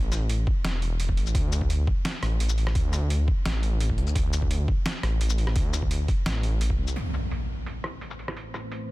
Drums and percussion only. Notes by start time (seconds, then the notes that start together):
0.12 cross-stick, closed hi-hat, shaker
0.30 closed hi-hat
0.47 kick
0.65 snare, closed hi-hat
0.82 closed hi-hat
1.00 closed hi-hat
1.09 kick
1.17 closed hi-hat
1.26 shaker
1.35 kick, closed hi-hat
1.52 closed hi-hat, shaker
1.61 kick
1.70 closed hi-hat
1.87 kick
2.05 snare, closed hi-hat
2.23 cross-stick, closed hi-hat
2.40 closed hi-hat
2.49 shaker
2.58 closed hi-hat
2.67 cross-stick
2.75 kick, closed hi-hat
2.93 cross-stick, closed hi-hat, shaker
3.10 closed hi-hat
3.28 kick
3.46 snare, closed hi-hat
3.63 closed hi-hat
3.81 closed hi-hat
3.89 kick
3.98 closed hi-hat
4.07 shaker
4.16 kick, closed hi-hat
4.33 closed hi-hat, shaker
4.42 kick
4.51 closed hi-hat
4.68 kick
4.86 snare, closed hi-hat
5.03 cross-stick, closed hi-hat
5.21 closed hi-hat
5.30 shaker
5.38 closed hi-hat
5.47 cross-stick
5.56 kick, closed hi-hat
5.73 cross-stick, closed hi-hat, shaker
5.82 kick
5.91 closed hi-hat
6.08 kick, closed hi-hat
6.26 snare, closed hi-hat
6.43 closed hi-hat
6.61 closed hi-hat
6.70 kick
6.88 shaker
6.96 closed hi-hat
7.14 closed hi-hat, shaker
7.31 closed hi-hat
7.66 closed hi-hat
7.84 cross-stick, closed hi-hat
8.01 closed hi-hat
8.11 shaker
8.19 closed hi-hat
8.28 cross-stick
8.37 closed hi-hat
8.54 cross-stick, closed hi-hat, shaker
8.72 closed hi-hat